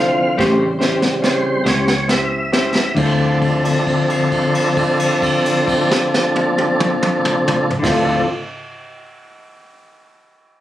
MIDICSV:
0, 0, Header, 1, 6, 480
1, 0, Start_track
1, 0, Key_signature, -1, "minor"
1, 0, Tempo, 831025
1, 711, Tempo, 872093
1, 1671, Time_signature, 12, 3, 24, 8
1, 1671, Tempo, 900901
1, 5737, End_track
2, 0, Start_track
2, 0, Title_t, "Grand piano"
2, 0, Program_c, 0, 0
2, 0, Note_on_c, 0, 64, 61
2, 0, Note_on_c, 0, 65, 58
2, 0, Note_on_c, 0, 69, 56
2, 0, Note_on_c, 0, 72, 67
2, 167, Note_off_c, 0, 64, 0
2, 167, Note_off_c, 0, 65, 0
2, 167, Note_off_c, 0, 69, 0
2, 168, Note_off_c, 0, 72, 0
2, 224, Note_on_c, 0, 64, 48
2, 225, Note_on_c, 0, 61, 57
2, 225, Note_on_c, 0, 67, 52
2, 228, Note_on_c, 0, 72, 64
2, 406, Note_off_c, 0, 61, 0
2, 406, Note_off_c, 0, 64, 0
2, 406, Note_off_c, 0, 67, 0
2, 407, Note_off_c, 0, 72, 0
2, 461, Note_on_c, 0, 61, 59
2, 462, Note_on_c, 0, 64, 62
2, 464, Note_on_c, 0, 67, 62
2, 465, Note_on_c, 0, 72, 72
2, 646, Note_off_c, 0, 61, 0
2, 647, Note_off_c, 0, 64, 0
2, 648, Note_off_c, 0, 67, 0
2, 648, Note_off_c, 0, 72, 0
2, 704, Note_on_c, 0, 61, 55
2, 706, Note_on_c, 0, 64, 54
2, 709, Note_on_c, 0, 67, 52
2, 710, Note_on_c, 0, 73, 64
2, 883, Note_off_c, 0, 61, 0
2, 884, Note_off_c, 0, 64, 0
2, 885, Note_off_c, 0, 67, 0
2, 886, Note_off_c, 0, 73, 0
2, 939, Note_on_c, 0, 64, 49
2, 940, Note_on_c, 0, 61, 52
2, 941, Note_on_c, 0, 73, 62
2, 942, Note_on_c, 0, 67, 54
2, 1120, Note_off_c, 0, 64, 0
2, 1121, Note_off_c, 0, 61, 0
2, 1122, Note_off_c, 0, 67, 0
2, 1122, Note_off_c, 0, 73, 0
2, 1178, Note_on_c, 0, 61, 50
2, 1178, Note_on_c, 0, 64, 49
2, 1178, Note_on_c, 0, 72, 57
2, 1179, Note_on_c, 0, 67, 44
2, 1361, Note_off_c, 0, 72, 0
2, 1362, Note_off_c, 0, 61, 0
2, 1362, Note_off_c, 0, 64, 0
2, 1362, Note_off_c, 0, 67, 0
2, 1421, Note_on_c, 0, 64, 48
2, 1422, Note_on_c, 0, 61, 57
2, 1422, Note_on_c, 0, 67, 47
2, 1424, Note_on_c, 0, 72, 64
2, 1607, Note_off_c, 0, 61, 0
2, 1607, Note_off_c, 0, 64, 0
2, 1608, Note_off_c, 0, 67, 0
2, 1609, Note_off_c, 0, 72, 0
2, 1663, Note_on_c, 0, 64, 60
2, 1671, Note_on_c, 0, 65, 51
2, 1679, Note_on_c, 0, 69, 55
2, 1684, Note_on_c, 0, 72, 68
2, 4180, Note_off_c, 0, 64, 0
2, 4184, Note_off_c, 0, 65, 0
2, 4188, Note_off_c, 0, 69, 0
2, 4190, Note_off_c, 0, 72, 0
2, 4253, Note_on_c, 0, 64, 66
2, 4258, Note_on_c, 0, 65, 58
2, 4266, Note_on_c, 0, 69, 60
2, 4274, Note_on_c, 0, 72, 69
2, 4458, Note_off_c, 0, 64, 0
2, 4461, Note_off_c, 0, 65, 0
2, 4465, Note_off_c, 0, 69, 0
2, 4470, Note_off_c, 0, 72, 0
2, 5737, End_track
3, 0, Start_track
3, 0, Title_t, "Clean electric guitar"
3, 0, Program_c, 1, 27
3, 217, Note_on_c, 1, 57, 70
3, 220, Note_on_c, 1, 61, 87
3, 222, Note_on_c, 1, 67, 84
3, 228, Note_on_c, 1, 72, 88
3, 366, Note_off_c, 1, 57, 0
3, 368, Note_off_c, 1, 61, 0
3, 368, Note_off_c, 1, 67, 0
3, 371, Note_off_c, 1, 72, 0
3, 455, Note_on_c, 1, 72, 56
3, 462, Note_on_c, 1, 67, 54
3, 466, Note_on_c, 1, 61, 44
3, 607, Note_off_c, 1, 72, 0
3, 610, Note_off_c, 1, 67, 0
3, 612, Note_off_c, 1, 61, 0
3, 936, Note_on_c, 1, 72, 54
3, 938, Note_on_c, 1, 67, 47
3, 946, Note_on_c, 1, 61, 47
3, 1083, Note_off_c, 1, 72, 0
3, 1084, Note_off_c, 1, 67, 0
3, 1088, Note_off_c, 1, 61, 0
3, 1654, Note_on_c, 1, 50, 77
3, 1677, Note_on_c, 1, 60, 82
3, 1716, Note_on_c, 1, 69, 77
3, 4197, Note_off_c, 1, 50, 0
3, 4208, Note_off_c, 1, 60, 0
3, 4228, Note_off_c, 1, 69, 0
3, 4238, Note_on_c, 1, 50, 81
3, 4263, Note_on_c, 1, 60, 78
3, 4281, Note_on_c, 1, 65, 84
3, 4300, Note_on_c, 1, 69, 83
3, 4466, Note_off_c, 1, 50, 0
3, 4479, Note_off_c, 1, 60, 0
3, 4488, Note_off_c, 1, 65, 0
3, 4497, Note_off_c, 1, 69, 0
3, 5737, End_track
4, 0, Start_track
4, 0, Title_t, "Tonewheel organ"
4, 0, Program_c, 2, 16
4, 0, Note_on_c, 2, 50, 59
4, 0, Note_on_c, 2, 53, 56
4, 0, Note_on_c, 2, 60, 61
4, 0, Note_on_c, 2, 77, 105
4, 204, Note_off_c, 2, 50, 0
4, 205, Note_off_c, 2, 53, 0
4, 207, Note_off_c, 2, 60, 0
4, 219, Note_off_c, 2, 77, 0
4, 226, Note_on_c, 2, 49, 53
4, 227, Note_on_c, 2, 55, 49
4, 233, Note_on_c, 2, 60, 60
4, 706, Note_on_c, 2, 72, 94
4, 922, Note_off_c, 2, 49, 0
4, 923, Note_off_c, 2, 55, 0
4, 925, Note_off_c, 2, 60, 0
4, 936, Note_off_c, 2, 72, 0
4, 945, Note_on_c, 2, 73, 105
4, 1176, Note_off_c, 2, 73, 0
4, 1188, Note_on_c, 2, 76, 101
4, 1659, Note_off_c, 2, 76, 0
4, 1669, Note_on_c, 2, 53, 69
4, 1671, Note_on_c, 2, 69, 71
4, 1673, Note_on_c, 2, 60, 70
4, 1675, Note_on_c, 2, 62, 73
4, 4183, Note_off_c, 2, 53, 0
4, 4184, Note_off_c, 2, 69, 0
4, 4185, Note_off_c, 2, 60, 0
4, 4186, Note_off_c, 2, 62, 0
4, 4257, Note_on_c, 2, 69, 72
4, 4258, Note_on_c, 2, 53, 68
4, 4259, Note_on_c, 2, 60, 65
4, 4262, Note_on_c, 2, 62, 67
4, 4474, Note_off_c, 2, 53, 0
4, 4474, Note_off_c, 2, 60, 0
4, 4474, Note_off_c, 2, 69, 0
4, 4476, Note_off_c, 2, 62, 0
4, 5737, End_track
5, 0, Start_track
5, 0, Title_t, "Fingered electric bass"
5, 0, Program_c, 3, 33
5, 0, Note_on_c, 3, 36, 91
5, 206, Note_off_c, 3, 36, 0
5, 226, Note_on_c, 3, 33, 80
5, 924, Note_off_c, 3, 33, 0
5, 944, Note_on_c, 3, 37, 95
5, 1649, Note_off_c, 3, 37, 0
5, 1667, Note_on_c, 3, 38, 79
5, 4182, Note_off_c, 3, 38, 0
5, 4263, Note_on_c, 3, 38, 89
5, 4464, Note_off_c, 3, 38, 0
5, 5737, End_track
6, 0, Start_track
6, 0, Title_t, "Drums"
6, 224, Note_on_c, 9, 36, 85
6, 233, Note_on_c, 9, 38, 64
6, 282, Note_off_c, 9, 36, 0
6, 290, Note_off_c, 9, 38, 0
6, 469, Note_on_c, 9, 38, 60
6, 527, Note_off_c, 9, 38, 0
6, 591, Note_on_c, 9, 38, 59
6, 649, Note_off_c, 9, 38, 0
6, 714, Note_on_c, 9, 38, 74
6, 769, Note_off_c, 9, 38, 0
6, 949, Note_on_c, 9, 38, 85
6, 1004, Note_off_c, 9, 38, 0
6, 1067, Note_on_c, 9, 38, 68
6, 1122, Note_off_c, 9, 38, 0
6, 1184, Note_on_c, 9, 38, 90
6, 1239, Note_off_c, 9, 38, 0
6, 1428, Note_on_c, 9, 38, 98
6, 1483, Note_off_c, 9, 38, 0
6, 1548, Note_on_c, 9, 38, 82
6, 1603, Note_off_c, 9, 38, 0
6, 1665, Note_on_c, 9, 49, 86
6, 1666, Note_on_c, 9, 36, 95
6, 1719, Note_off_c, 9, 36, 0
6, 1719, Note_off_c, 9, 49, 0
6, 1907, Note_on_c, 9, 36, 66
6, 1907, Note_on_c, 9, 49, 45
6, 1960, Note_off_c, 9, 36, 0
6, 1960, Note_off_c, 9, 49, 0
6, 2029, Note_on_c, 9, 57, 48
6, 2083, Note_off_c, 9, 57, 0
6, 2148, Note_on_c, 9, 36, 59
6, 2149, Note_on_c, 9, 49, 45
6, 2201, Note_off_c, 9, 36, 0
6, 2202, Note_off_c, 9, 49, 0
6, 2268, Note_on_c, 9, 57, 42
6, 2322, Note_off_c, 9, 57, 0
6, 2386, Note_on_c, 9, 49, 40
6, 2387, Note_on_c, 9, 36, 53
6, 2440, Note_off_c, 9, 49, 0
6, 2441, Note_off_c, 9, 36, 0
6, 2508, Note_on_c, 9, 57, 47
6, 2561, Note_off_c, 9, 57, 0
6, 2627, Note_on_c, 9, 49, 47
6, 2628, Note_on_c, 9, 36, 55
6, 2681, Note_off_c, 9, 36, 0
6, 2681, Note_off_c, 9, 49, 0
6, 2747, Note_on_c, 9, 57, 50
6, 2801, Note_off_c, 9, 57, 0
6, 2869, Note_on_c, 9, 36, 60
6, 2871, Note_on_c, 9, 49, 48
6, 2922, Note_off_c, 9, 36, 0
6, 2924, Note_off_c, 9, 49, 0
6, 2992, Note_on_c, 9, 57, 52
6, 3045, Note_off_c, 9, 57, 0
6, 3110, Note_on_c, 9, 36, 64
6, 3113, Note_on_c, 9, 49, 52
6, 3163, Note_off_c, 9, 36, 0
6, 3166, Note_off_c, 9, 49, 0
6, 3237, Note_on_c, 9, 38, 82
6, 3290, Note_off_c, 9, 38, 0
6, 3359, Note_on_c, 9, 38, 78
6, 3412, Note_off_c, 9, 38, 0
6, 3473, Note_on_c, 9, 48, 81
6, 3526, Note_off_c, 9, 48, 0
6, 3592, Note_on_c, 9, 48, 90
6, 3646, Note_off_c, 9, 48, 0
6, 3711, Note_on_c, 9, 47, 91
6, 3764, Note_off_c, 9, 47, 0
6, 3829, Note_on_c, 9, 47, 101
6, 3882, Note_off_c, 9, 47, 0
6, 3949, Note_on_c, 9, 45, 99
6, 4002, Note_off_c, 9, 45, 0
6, 4070, Note_on_c, 9, 45, 106
6, 4123, Note_off_c, 9, 45, 0
6, 4191, Note_on_c, 9, 43, 96
6, 4244, Note_off_c, 9, 43, 0
6, 4262, Note_on_c, 9, 36, 103
6, 4263, Note_on_c, 9, 49, 90
6, 4268, Note_on_c, 9, 38, 91
6, 4315, Note_off_c, 9, 36, 0
6, 4316, Note_off_c, 9, 49, 0
6, 4322, Note_off_c, 9, 38, 0
6, 5737, End_track
0, 0, End_of_file